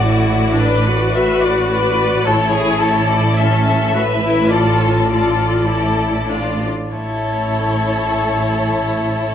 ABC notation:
X:1
M:4/4
L:1/8
Q:1/4=104
K:A
V:1 name="Violin section"
d2 d2 e d d2 | c2 c d e e3 | d c d4 d z | c8 |]
V:2 name="Violin section"
F2 B2 B2 B2 | A G A2 A2 B2 | A2 A2 A2 =F z | A8 |]
V:3 name="Viola section"
E2 D F4- F | E4 C2 F E | =F2 F2 E2 D z | E8 |]
V:4 name="Cello section" clef=bass
A,,8 | A,,8- | A,,6- A,, z | A,,8 |]
V:5 name="Double bass section" clef=bass
A,,,8 | A,,,8- | A,,,6- A,,, z | A,,,8 |]